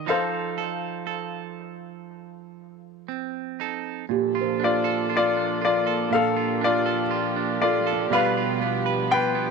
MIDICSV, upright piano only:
0, 0, Header, 1, 2, 480
1, 0, Start_track
1, 0, Key_signature, -2, "major"
1, 0, Tempo, 1003344
1, 37, Time_signature, 4, 2, 24, 8
1, 4548, End_track
2, 0, Start_track
2, 0, Title_t, "Upright piano"
2, 0, Program_c, 0, 0
2, 0, Note_on_c, 0, 75, 66
2, 43, Note_on_c, 0, 77, 60
2, 46, Note_on_c, 0, 69, 44
2, 48, Note_off_c, 0, 75, 0
2, 48, Note_on_c, 0, 72, 47
2, 1464, Note_off_c, 0, 77, 0
2, 1465, Note_off_c, 0, 69, 0
2, 1466, Note_off_c, 0, 72, 0
2, 2217, Note_on_c, 0, 65, 50
2, 2221, Note_on_c, 0, 74, 67
2, 2436, Note_off_c, 0, 65, 0
2, 2462, Note_off_c, 0, 74, 0
2, 2467, Note_on_c, 0, 65, 59
2, 2471, Note_on_c, 0, 74, 74
2, 2681, Note_off_c, 0, 65, 0
2, 2683, Note_off_c, 0, 74, 0
2, 2702, Note_on_c, 0, 65, 52
2, 2702, Note_on_c, 0, 74, 69
2, 2918, Note_off_c, 0, 65, 0
2, 2931, Note_on_c, 0, 77, 72
2, 2940, Note_on_c, 0, 69, 61
2, 2941, Note_off_c, 0, 74, 0
2, 3157, Note_off_c, 0, 69, 0
2, 3176, Note_off_c, 0, 77, 0
2, 3178, Note_on_c, 0, 74, 76
2, 3181, Note_on_c, 0, 65, 61
2, 3633, Note_off_c, 0, 74, 0
2, 3634, Note_off_c, 0, 65, 0
2, 3643, Note_on_c, 0, 74, 69
2, 3649, Note_on_c, 0, 65, 55
2, 3870, Note_off_c, 0, 65, 0
2, 3888, Note_on_c, 0, 77, 78
2, 3891, Note_off_c, 0, 74, 0
2, 3896, Note_on_c, 0, 71, 58
2, 4345, Note_off_c, 0, 77, 0
2, 4349, Note_off_c, 0, 71, 0
2, 4361, Note_on_c, 0, 79, 82
2, 4370, Note_on_c, 0, 71, 67
2, 4548, Note_off_c, 0, 71, 0
2, 4548, Note_off_c, 0, 79, 0
2, 4548, End_track
0, 0, End_of_file